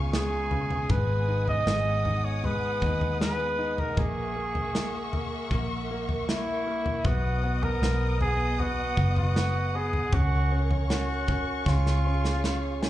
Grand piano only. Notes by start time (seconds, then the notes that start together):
Already playing: C#3 G#3 F4
0.13 G#3
0.51 C#3
0.90 G#3
1.28 D#4
1.67 G#3
2.05 D#4
2.44 G#3
2.82 D#4
3.21 G#3
3.58 D#4
3.97 A#3
4.36 A#3
4.75 A#3
5.14 A#3
5.52 A#3
5.91 A#3
6.28 A#3
6.67 A#3
7.06 B3
7.43 B3
7.83 B3
8.21 B3
8.60 B3
8.99 B3
9.36 B3
9.75 B3
10.12 C#4
10.51 C#4
10.90 C#4
11.29 C#4
11.68 C#4
12.06 C#4
12.44 C#4
12.82 C#4